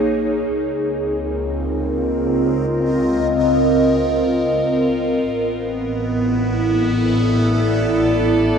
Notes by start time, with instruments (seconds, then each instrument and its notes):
Already playing: double bass section A#1, ambient pad A#3 D#4 G#4 C#5
0.52 double bass section C#2, ambient pad C4
0.95 ambient pad A#4
1.11 ambient pad F4
1.73 ambient pad D#5
5.26 double bass section A1, ambient pad B3
5.65 ambient pad E4
6.29 ambient pad A4
6.98 ambient pad D5